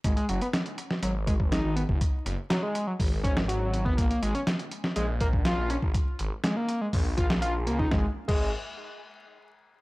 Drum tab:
CC |----------------|----------------|----------------|----------------|
HH |xxxxxxx-x-x-x-x-|x-x-x-x-o-x-x-x-|xxxxxxx-x-x-x-x-|x-x-x-x-o-x-x-x-|
SD |----o--o----o---|----o------o----|----o--o----o---|----o------o----|
BD |o---------oo---o|o-------o-o----o|o---------oo---o|o-------o-o----o|

CC |---x------------|
HH |----------------|
SD |o---------------|
BD |o--o------------|